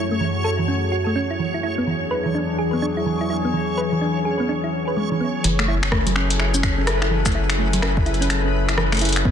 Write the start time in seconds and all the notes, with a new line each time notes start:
Already playing: F#2 F#3 A3 F#4 G#4 C#5
0.11 A3
0.20 E3
0.44 A4
0.59 E3
0.68 C#4
0.92 F#4
1.07 A3
1.16 C#4
1.30 E4
1.39 E3
1.54 E4
1.63 E2 E3 F#3 D4 E4 G#4
1.78 B3
1.87 E3
2.11 B4
2.26 E3
2.35 D4
2.59 G#4
2.73 B3
2.82 D4
2.97 E4
3.06 E3
3.21 E4
3.30 E4
3.45 B3
3.54 E3 C#4
3.78 B4
3.92 E3
4.01 D4
4.25 G#4
4.40 B3
4.49 D4
4.64 E4
4.88 B4
4.97 G#3
5.11 E3
5.20 B3
5.44 F#1 E3 F#3 C#4 E4 G#4 A4 B4, closed hi-hat
5.59 A3, finger snap
5.68 E4
5.83 finger snap
5.92 A3, kick, cross-stick
6.07 F#3, closed hi-hat
6.16 C#4, finger snap
6.30 closed hi-hat
6.40 E4, finger snap
6.54 C#4, shaker
6.63 C#4, finger snap, kick, closed hi-hat
6.78 C#4
6.87 cross-stick, closed hi-hat
7.02 E4, finger snap
7.11 E3
7.26 A3, finger snap, kick, closed hi-hat, shaker
7.32 E4, closed hi-hat
7.50 finger snap, closed hi-hat
7.59 A3
7.73 F#3, closed hi-hat
7.82 C#4, finger snap, cross-stick
7.97 kick
8.06 E4, closed hi-hat
8.14 closed hi-hat
8.21 C#4, closed hi-hat
8.30 C#4, finger snap, closed hi-hat
8.45 C#4
8.69 E4, finger snap, closed hi-hat
8.78 E3, cross-stick
8.92 A3, finger snap, closed hi-hat
8.95 closed hi-hat
8.97 closed hi-hat
8.99 closed hi-hat
9.01 E4, closed hi-hat
9.05 closed hi-hat
9.09 closed hi-hat
9.12 finger snap, closed hi-hat
9.16 closed hi-hat
9.25 E1 E3 B3 D4 F#4, kick